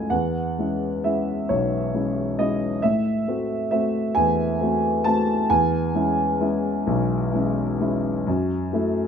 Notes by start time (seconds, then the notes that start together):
Already playing: C#2 F#3 A3 E4 D#5 F#5 G#5
0.10 E2 F#5
0.59 G#3 C#4 E4
1.04 G#3 C#4 E4 E5
1.49 B1 C#5
1.95 G#3 C#4 E4
2.39 G#3 C#4 E4 D#5
2.82 A2 E5
3.28 A3 C4 F#4
3.71 A3 C4 F#4 E5
4.15 E2 G#5
4.61 A3 C4 F#4
5.04 A3 C4 F#4 A5
5.50 E2 G#5
5.95 G#3 C#4 E4
6.41 G#3 C#4 E4
6.87 B1
7.34 G#3 C#4 E4
7.80 G#3 C#4 E4
8.27 F#2
8.73 F#3 A3 E4